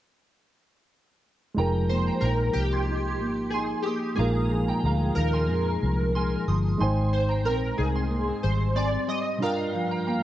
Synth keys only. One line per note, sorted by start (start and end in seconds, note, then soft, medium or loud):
1.89 2.23 C5 medium
2.21 2.55 A#4 medium
2.54 3.55 G4 medium
3.51 3.86 G#4 medium
3.83 4.15 G4 medium
4.16 5.18 G#4 medium
5.15 6.42 A#4 medium
7.13 7.46 C5 medium
7.45 7.79 A#4 medium
7.78 8.45 G#4 medium
8.43 8.77 C5 medium
8.76 9.09 D5 medium
9.08 9.39 D#5 medium
9.42 10.23 F5 medium